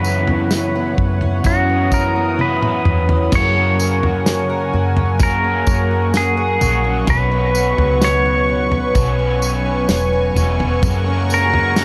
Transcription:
0.00 0.94 F#2 loud
0.00 1.44 F#2 medium
0.00 1.45 C#3 medium
0.00 1.42 E3 medium
0.00 0.27 B3 medium
0.00 1.44 B3 medium
0.00 1.22 C#4 medium
0.00 1.46 C#4 medium
0.00 1.48 F#4 medium
0.00 1.52 B4 medium
0.00 3.30 C#5 medium
0.00 3.30 F#5 medium
0.04 0.51 E3 medium
0.04 tambourine medium
0.28 0.74 B3 medium
0.28 floor tom medium
0.51 0.98 E3 medium
0.51 snare medium
0.51 tambourine medium
0.75 1.68 B3 medium
0.98 1.43 F#2 medium
0.98 1.91 E3 medium
0.98 kick medium
1.21 1.46 C#4 medium
1.21 floor tom medium
1.44 2.82 F#2 medium
1.44 3.42 F#2 medium
1.44 2.36 E3 medium
1.44 2.38 B3 medium
1.44 3.09 C#4 medium
1.44 2.40 C#4 medium
1.44 2.83 F#4 medium
1.44 3.31 D#6 medium
1.44 kick medium
1.44 floor tom medium
1.44 tambourine medium
1.48 2.41 F#4 medium
1.69 2.14 B3 medium
1.92 2.38 E3 medium
1.92 2.41 A#4 medium
1.92 kick medium
1.92 tambourine medium
2.16 2.61 B3 soft
2.37 3.32 E3 medium
2.37 2.85 E3 medium
2.37 3.33 B3 medium
2.37 3.35 C#4 medium
2.37 3.37 B4 medium
2.37 high tom medium
2.42 3.37 F#4 medium
2.62 3.42 B3 medium
2.62 mid tom medium
2.85 3.31 E2 medium
2.85 3.42 E3 medium
2.85 mid tom medium
3.09 3.56 C#4 medium
3.09 floor tom medium
3.31 5.19 F#2 medium
3.31 4.69 F#2 loud
3.31 5.20 C#3 medium
3.31 5.20 F#3 medium
3.31 5.19 F#3 medium
3.31 7.04 A#4 medium
3.31 8.91 F#5 medium
3.31 7.04 G#5 medium
3.31 10.79 C#6 medium
3.31 kick loud
3.31 floor tom loud
3.31 crash loud
3.31 tambourine medium
3.35 5.19 A#3 medium
3.35 5.22 C#4 medium
3.35 5.22 G#4 medium
3.35 4.71 C#5 medium
3.56 4.26 C#4 medium
3.79 4.48 A#4 medium
3.79 tambourine medium
4.03 4.73 F#4 medium
4.03 floor tom medium
4.26 4.96 C#4 medium
4.26 snare medium
4.26 tambourine medium
4.50 5.66 A#4 medium
4.73 5.64 F#2 medium
4.73 5.90 F#4 medium
4.97 5.43 C#4 medium
4.97 floor tom medium
5.19 6.62 F#3 medium
5.19 7.07 F#3 medium
5.19 6.61 A#3 medium
5.19 6.60 C#4 medium
5.19 6.12 A#4 medium
5.19 kick loud
5.19 floor tom medium
5.19 tambourine medium
5.23 6.58 G#4 medium
5.44 6.13 C#4 medium
5.67 6.57 F#2 medium
5.67 6.36 A#4 medium
5.67 kick medium
5.67 tambourine medium
5.91 6.60 F#4 medium
6.14 6.84 C#4 medium
6.14 7.05 G#4 medium
6.14 snare medium
6.14 tambourine medium
6.37 7.17 A#4 medium
6.59 7.06 A#1 medium
6.59 7.09 A#3 medium
6.59 7.08 C#4 soft
6.59 7.55 F#4 medium
6.59 7.07 G#4 soft
6.59 floor tom medium
6.59 tambourine medium
6.64 7.06 F#3 soft
6.84 7.31 C#4 medium
7.05 7.75 B1 loud
7.05 8.94 B2 medium
7.05 8.95 B2 medium
7.05 8.94 F#3 medium
7.05 8.95 B3 medium
7.05 10.80 B4 medium
7.05 10.80 C#5 medium
7.05 kick loud
7.05 floor tom loud
7.05 tambourine medium
7.10 8.97 C#4 medium
7.10 8.98 F#4 medium
7.10 8.06 B4 medium
7.31 8.00 B3 medium
7.55 8.25 F#4 medium
7.55 tambourine medium
7.78 8.91 C#2 medium
7.78 8.48 C#4 medium
7.78 floor tom medium
8.02 8.71 B3 medium
8.02 10.33 C#5 loud
8.02 snare medium
8.02 tambourine loud
8.25 9.41 F#4 medium
8.49 9.65 C#4 medium
8.72 9.18 B3 medium
8.72 floor tom medium
8.95 9.85 B1 loud
8.95 10.82 B2 medium
8.95 10.84 F#3 medium
8.95 10.36 B3 medium
8.95 10.37 C#4 medium
8.95 10.35 F#4 medium
8.95 11.85 G#5 medium
8.95 kick loud
8.95 floor tom medium
8.95 tambourine medium
9.19 9.89 B3 medium
9.42 10.12 F#4 medium
9.42 tambourine medium
9.65 10.36 C#4 medium
9.89 10.34 E1 medium
9.89 10.58 B3 medium
9.89 snare loud
9.89 tambourine medium
10.13 11.29 F#4 medium
10.35 10.80 E1 medium
10.35 11.06 C#4 medium
10.35 10.84 C#4 medium
10.35 10.83 F#4 medium
10.35 floor tom medium
10.35 tambourine medium
10.39 10.85 B3 soft
10.59 10.92 B3 medium
10.59 floor tom medium
10.81 11.85 F#2 medium
10.81 11.85 F#2 loud
10.81 11.85 C#3 medium
10.81 11.85 F#3 medium
10.81 11.85 G#3 loud
10.81 11.85 A#4 medium
10.81 11.85 F#5 medium
10.81 11.85 C#6 loud
10.81 kick loud
10.81 floor tom loud
10.81 tambourine medium
10.86 11.85 A#3 medium
10.86 11.85 C#4 medium
10.86 11.85 F#4 loud
11.06 11.76 C#4 medium
11.29 11.85 A#4 medium
11.29 tambourine medium
11.34 11.85 A#4 medium
11.52 11.85 F#4 medium
11.52 floor tom medium
11.76 11.85 C#4 medium
11.76 snare loud
11.76 tambourine loud

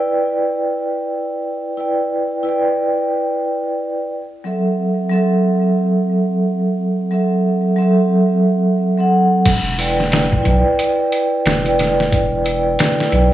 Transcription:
0.00 1.74 E4 medium
0.00 1.75 B4 medium
0.00 1.76 D5 medium
0.00 1.77 G5 medium
1.77 2.42 E4 medium
1.77 2.42 B4 medium
1.77 2.43 D5 medium
1.77 2.43 G5 medium
2.43 4.09 E4 medium
2.43 4.10 B4 medium
2.43 4.11 D5 medium
2.49 4.12 G5 medium
4.44 5.08 F#3 medium
4.44 5.09 C4 medium
4.44 5.09 A4 medium
4.44 5.10 E5 medium
5.09 7.08 F#3 medium
5.09 7.09 C4 medium
5.09 7.10 A4 medium
5.15 7.11 E5 medium
7.11 7.75 F#3 medium
7.11 7.75 C4 medium
7.11 7.76 A4 medium
7.11 7.76 E5 medium
7.76 8.94 F#3 medium
7.76 8.95 C4 medium
7.80 8.96 A4 medium
7.80 8.97 E5 medium
8.98 9.43 F#3 medium
8.98 9.44 C4 medium
8.98 9.44 A4 medium
8.98 9.45 F#5 medium
9.45 10.43 E1 loud
9.45 kick loud
9.45 closed hi-hat medium
9.45 crash medium
9.65 closed hi-hat soft
9.78 10.41 E4 medium
9.78 10.42 B4 medium
9.78 10.43 D5 medium
9.78 10.43 G5 medium
9.78 open hi-hat medium
10.00 snare soft
10.12 snare loud
10.12 closed hi-hat medium
10.32 kick loud
10.43 10.63 B1 medium
10.43 11.60 E4 medium
10.43 11.61 B4 medium
10.43 kick medium
10.43 closed hi-hat medium
10.47 11.62 D5 medium
10.47 11.63 G5 loud
10.79 closed hi-hat medium
11.12 closed hi-hat medium
11.46 12.77 E1 medium
11.46 snare loud
11.46 closed hi-hat medium
11.63 12.41 E4 medium
11.63 12.42 B4 medium
11.63 12.43 D5 medium
11.63 closed hi-hat soft
11.69 12.44 G5 loud
11.79 snare soft
11.79 closed hi-hat medium
12.00 snare medium
12.12 kick loud
12.12 closed hi-hat medium
12.44 13.08 E4 medium
12.44 13.09 B4 medium
12.44 13.09 D5 medium
12.44 13.10 G5 medium
12.44 closed hi-hat medium
12.79 snare loud
12.79 closed hi-hat medium
13.00 snare medium
13.09 13.30 B1 medium
13.09 13.34 E4 medium
13.09 13.34 B4 medium
13.09 closed hi-hat medium
13.14 13.34 D5 medium
13.14 13.34 G5 loud

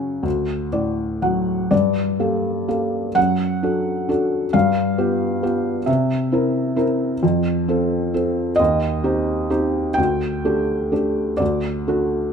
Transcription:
0.00 0.21 F#2 soft
0.00 0.22 C#3 soft
0.00 0.23 C#4 soft
0.00 0.69 F#5 medium
0.23 1.67 D2 soft
0.72 1.69 A2 soft
0.72 1.19 D5 soft
1.22 1.70 F#3 soft
1.22 1.68 F#5 soft
1.71 3.12 G2 soft
1.71 3.20 D5 medium
2.19 2.67 A#3 soft
2.19 2.67 G4 soft
2.19 2.67 A4 soft
2.68 3.06 A#3 soft
2.68 3.07 G4 soft
2.68 3.07 A4 soft
3.15 4.49 F#2 soft
3.15 4.49 F#5 medium
3.63 4.07 D4 soft
3.63 4.07 F#4 soft
3.63 4.08 A4 soft
4.09 4.45 D4 soft
4.09 4.45 F#4 soft
4.09 4.45 A4 soft
4.53 5.84 G2 soft
4.53 5.83 F5 medium
4.98 5.41 B3 soft
4.98 5.42 F4 soft
4.98 5.42 G4 soft
5.43 5.79 B3 soft
5.43 5.79 F4 soft
5.43 5.79 G4 soft
5.86 7.19 C3 medium
5.86 6.84 E5 medium
6.32 6.75 C4 soft
6.32 6.75 E4 soft
6.32 6.75 A#4 soft
6.76 7.13 C4 soft
6.76 7.13 E4 soft
6.76 7.14 A#4 soft
7.23 8.55 F2 medium
7.68 8.13 C4 soft
7.68 8.12 F4 soft
7.68 8.13 A4 medium
8.14 8.50 C4 soft
8.14 8.50 F4 soft
8.14 8.51 A4 soft
8.56 9.94 D#2 medium
8.56 10.00 D#5 medium
9.04 9.48 C4 soft
9.04 9.49 D#4 soft
9.04 9.49 G4 soft
9.50 9.88 C4 soft
9.50 9.88 D#4 soft
9.50 9.88 G4 soft
9.94 11.37 D2 medium
9.94 11.35 G5 medium
10.45 10.90 A3 soft
10.45 10.91 D4 soft
10.45 10.91 G4 soft
10.92 11.30 A3 soft
10.92 11.31 D4 soft
10.92 11.31 G4 soft
11.37 12.33 D2 soft
11.37 12.33 D5 medium
11.88 12.33 A3 soft
11.88 12.33 D4 soft
11.88 12.33 F#4 soft

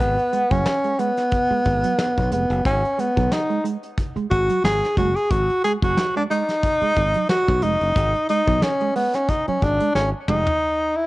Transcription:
0.00 0.16 G#1 loud
0.00 0.52 B3 loud
0.00 kick loud
0.00 closed hi-hat loud
0.18 muted clean electric guitar stroke soft
0.18 closed hi-hat soft
0.33 0.44 G#3 medium
0.33 closed hi-hat medium
0.51 0.64 F#1 medium
0.51 0.60 F#3 medium
0.51 1.01 C#4 medium
0.51 kick loud
0.51 closed hi-hat medium
0.66 muted clean electric guitar stroke soft
0.66 snare loud
0.84 0.93 G#3 medium
0.84 closed hi-hat soft
0.99 1.10 G#3 medium
0.99 2.32 B3 loud
0.99 closed hi-hat medium
1.17 snare soft
1.17 closed hi-hat medium
1.32 kick medium
1.32 closed hi-hat medium
1.51 1.60 G#3 medium
1.51 muted fingered electric bass stroke medium
1.65 1.82 G#1 medium
1.65 muted clean electric guitar stroke soft
1.65 kick medium
1.65 closed hi-hat medium
1.84 1.93 F#3 medium
1.84 closed hi-hat medium
1.99 snare loud
2.18 2.30 B1 medium
2.18 kick medium
2.18 closed hi-hat soft
2.31 2.48 F1 medium
2.31 2.43 G#3 medium
2.31 2.63 B3 medium
2.31 closed hi-hat medium
2.50 2.63 F#1 loud
2.50 closed hi-hat soft
2.65 2.82 G#1 loud
2.65 3.01 C#4 loud
2.65 kick loud
2.65 closed hi-hat loud
2.84 muted clean electric guitar stroke soft
2.84 closed hi-hat soft
2.98 3.09 G#3 medium
2.98 3.34 B3 medium
2.98 closed hi-hat medium
3.16 3.30 B1 medium
3.16 3.25 F#3 medium
3.16 kick loud
3.16 closed hi-hat soft
3.31 3.65 D#4 medium
3.31 muted clean electric guitar stroke soft
3.31 snare loud
3.49 3.58 G#3 medium
3.49 closed hi-hat soft
3.64 3.75 G#3 medium
3.64 closed hi-hat medium
3.83 closed hi-hat medium
3.98 kick medium
3.98 closed hi-hat loud
4.16 4.25 G#3 medium
4.16 muted fingered electric bass stroke soft
4.16 closed hi-hat soft
4.31 4.48 G#1 loud
4.31 4.62 F#4 loud
4.31 muted clean electric guitar stroke medium
4.31 kick medium
4.31 closed hi-hat medium
4.50 4.58 F#3 medium
4.50 closed hi-hat medium
4.64 4.80 G#1 medium
4.64 4.95 G#4 loud
4.64 snare loud
4.84 snare soft
4.84 closed hi-hat soft
4.97 5.14 F#1 medium
4.97 5.09 G#3 medium
4.97 5.17 F#4 loud
4.97 kick loud
4.97 closed hi-hat medium
5.16 5.32 G#4 loud
5.16 closed hi-hat soft
5.31 5.47 G#1 loud
5.31 5.64 F#4 loud
5.31 kick loud
5.31 closed hi-hat loud
5.49 muted clean electric guitar stroke soft
5.49 closed hi-hat soft
5.64 5.75 G#3 medium
5.64 5.73 G#4 loud
5.64 closed hi-hat medium
5.82 5.95 F#1 medium
5.82 5.91 F#3 medium
5.82 6.14 F#4 medium
5.82 kick loud
5.82 closed hi-hat soft
5.97 snare loud
6.16 6.25 G#3 medium
6.16 6.23 D4 medium
6.30 6.42 G#3 medium
6.30 7.26 D#4 loud
6.30 closed hi-hat medium
6.48 snare soft
6.48 closed hi-hat soft
6.63 kick loud
6.63 closed hi-hat loud
6.81 6.91 G#3 medium
6.81 muted fingered electric bass stroke soft
6.81 closed hi-hat soft
6.96 7.13 G#1 medium
6.96 muted clean electric guitar stroke medium
6.96 kick medium
6.96 closed hi-hat medium
7.14 7.24 F#3 medium
7.14 closed hi-hat medium
7.29 7.65 F#4 loud
7.29 snare loud
7.48 7.61 B1 loud
7.48 kick medium
7.48 snare soft
7.62 7.79 F1 medium
7.62 7.74 G#3 medium
7.62 8.29 D#4 loud
7.62 closed hi-hat medium
7.81 7.94 F#1 medium
7.81 closed hi-hat soft
7.96 8.12 G#1 loud
7.96 kick loud
7.96 closed hi-hat loud
8.15 muted clean electric guitar stroke soft
8.15 closed hi-hat soft
8.29 8.41 G#3 medium
8.29 8.65 D#4 medium
8.29 closed hi-hat medium
8.47 8.60 B1 loud
8.47 8.57 F#3 medium
8.47 kick medium
8.47 closed hi-hat medium
8.62 8.95 C#4 loud
8.62 snare loud
8.80 8.90 G#3 medium
8.80 closed hi-hat soft
8.96 9.07 G#3 medium
8.96 9.16 B3 medium
8.96 open hi-hat medium
9.14 9.31 C#4 medium
9.14 snare soft
9.14 closed hi-hat medium
9.29 9.48 D#4 medium
9.29 kick medium
9.29 closed hi-hat medium
9.48 9.57 F#3 medium
9.48 9.65 C#4 medium
9.48 muted fingered electric bass stroke soft
9.48 closed hi-hat soft
9.62 9.78 G#1 medium
9.62 9.94 D4 medium
9.62 muted clean electric guitar stroke soft
9.62 kick medium
9.62 closed hi-hat medium
9.80 9.89 G#3 medium
9.80 closed hi-hat medium
9.95 10.11 G#1 medium
9.95 10.10 C#4 medium
9.95 snare medium
10.28 10.45 F1 loud
10.28 10.40 G#3 medium
10.28 10.98 D#4 loud
10.28 mid tom medium
10.47 floor tom medium
10.96 11.07 E4 medium

